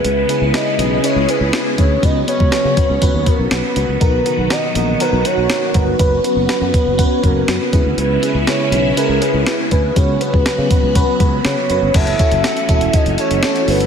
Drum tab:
CC |----------------|----------------|----------------|----------------|
HH |x-x-x-x-x-x-x-x-|x-x-x-x-x-x-x-x-|x-x-x-x-x-x-x-x-|x-x-x-x-x-x-x-x-|
SD |----o-------o---|----o-------o---|----o-------o---|----o-------o---|
BD |--------------o-|o--o--o-o-o-----|o-------------o-|o-----o-o-o---o-|

CC |----------------|----------------|x---------------|
HH |x-x-x-x-x-x-x-x-|x-x-x-x-x-x-x-x-|xxxxxxxxxxxxxxox|
SD |----o-------o---|----o-------o---|----o-------o---|
BD |--------------o-|o--o--o-o-o-----|o-o---o-o-------|